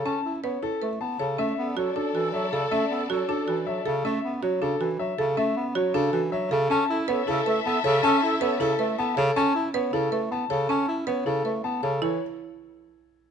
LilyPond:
<<
  \new Staff \with { instrumentName = "Grand piano" } { \time 7/8 \key e \dorian \tempo 4 = 158 a''8 r8 cis''8 a'8 r8 a''8 a'8 | e''8 r8 cis''8 a'8 r8 e''8 a'8 | e''8 r8 cis''8 a'8 r8 e''8 a'8 | e''8 r8 cis''8 a'8 r8 e''8 a'8 |
e''8 r8 cis''8 a'8 r8 e''8 a'8 | a''8 r8 cis''8 a'8 r8 a''8 a'8 | a''8 r8 cis''8 a'8 r8 a''8 a'8 | a''8 r8 cis''8 a'8 r8 a''8 a'8 |
a''8 r8 cis''8 a'8 r8 a''8 a'8 | cis''8 r2. | }
  \new Staff \with { instrumentName = "String section" } { \time 7/8 \key e \dorian r2. r8 | <a' d''>2.~ <a' d''>8~ | <a' d''>2. r8 | r2. r8 |
r2. r8 | <a' e''>2.~ <a' e''>8~ | <a' e''>2. r8 | r2. r8 |
r2. r8 | r2. r8 | }
  \new Staff \with { instrumentName = "Alto flute" } { \time 7/8 \key e \dorian r2. r8 | a'8 a'8 a'8 a'8 a'8 a'8 a'8 | a'8 a'8 a'8 a'8 a'8 a'8 r8 | r2. r8 |
r2. r8 | a'8 a'8 a'8 a'8 a'8 a'8 a'8 | a'8 a'8 a'8 a'8 a'8 a'8 r8 | r2. r8 |
r2. r8 | r2. r8 | }
  \new Staff \with { instrumentName = "Marimba" } { \time 7/8 \key e \dorian cis'8 r8 b'8 e'8 b'8 r8 cis''8 | cis'8 r8 fis'8 d'8 fis'8 r8 a'8 | cis'8 r8 fis'8 d'8 fis'8 r8 a'8 | cis'8 r8 fis'8 d'8 fis'8 r8 a'8 |
cis'8 r8 fis'8 d'8 fis'8 r8 a'8 | cis'8 r8 b'8 e'8 b'8 r8 cis''8 | cis'8 r8 b'8 e'8 b'8 r8 cis''8 | cis'8 r8 b'8 e'8 b'8 r8 cis''8 |
cis'8 r8 b'8 e'8 b'8 r8 cis''8 | e'8 r2. | }
  \new Staff \with { instrumentName = "Bass clarinet" } { \time 7/8 \key e \dorian cis'8 e'8 b8 r8 a8 b8 cis8 | a8 b8 fis8 r8 e8 fis8 cis8 | a8 b8 fis8 r8 e8 fis8 cis8 | a8 b8 fis8 cis8 e8 fis8 cis8 |
a8 b8 fis8 cis8 e8 fis8 cis8 | cis'8 e'8 b8 cis8 a8 b8 cis8 | cis'8 e'8 b8 cis8 a8 b8 cis8 | cis'8 e'8 b8 cis8 a8 b8 cis8 |
cis'8 e'8 b8 cis8 a8 b8 cis8 | e8 r2. | }
>>